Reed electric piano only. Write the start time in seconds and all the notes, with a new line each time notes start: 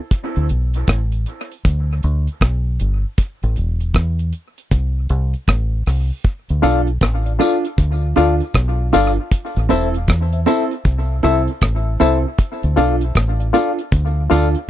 6.62 F4 A4 D5 F5
7.26 D5 F5
7.39 F4 A4 D5 F5
8.16 F4 A4 D5 F5
8.93 F4 A4 D5 F5
9.69 E4 A4 C5 E5
10.33 C5 E5
10.47 E4 A4 C5 E5
11.23 E4 A4 C5 E5
12.00 E4 A4 C5 E5
12.76 F4 A4 D5 F5
13.40 D5 F5
13.53 F4 A4 D5 F5
14.30 F4 A4 D5 F5